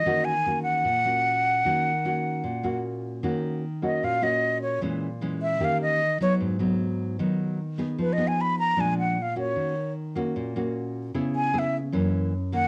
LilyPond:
<<
  \new Staff \with { instrumentName = "Flute" } { \time 4/4 \key ees \minor \tempo 4 = 152 ees''8 aes''4 ges''2~ ges''8~ | ges''2. r4 | r4. ees''8 f''8 ees''4 des''8 | r4. fes''8 f''8 ees''4 des''8 |
r1 | \tuplet 3/2 { ces''8 ees''8 aes''8 } ces'''8 bes''8 aes''8 ges''8 f''8 des''8~ | des''4 r2. | r8 aes''8 fes''8 r2 ges''8 | }
  \new Staff \with { instrumentName = "Nylon-string guitar" } { \time 4/4 \key ees \minor << { <bes des' ges'>8 r8 <bes des' ges'>4 r8 <bes des' ges'>4. | <bes des' ges'>8 r8 <bes des' ges'>4. <bes des' ges'>4. | <bes des' ges'>4 r8 <bes des' ges'>4 <bes des' ges'>4. | <fes aes des'>8 r8 <fes aes des'>4 <bes des' g'>4 r8 <ges ces' ees'>8~ |
<ges ces' ees'>8 <ges ces' ees'>4. <ges ces' ees'>4 r8 <ces' ees' aes'>8~ | <ces' ees' aes'>8 <ces' ees' aes'>4. <f aes d'>4 r8 <bes des' ges'>8~ | <bes des' ges'>8 r4 <bes des' ges'>4 <bes des' ges'>4. | <ces' fes' aes'>4 <ces' fes' aes'>8 r8 <fes bes des'>4 r8 <ees bes des'>8 | } \\ { ees2 bes,2 | ees2 bes,2 | ees2 bes,2 | bes,2 ees2 |
aes,2 ees2 | f2 bes,2 | ees2 bes,2 | des2 ges,2 | } >> }
>>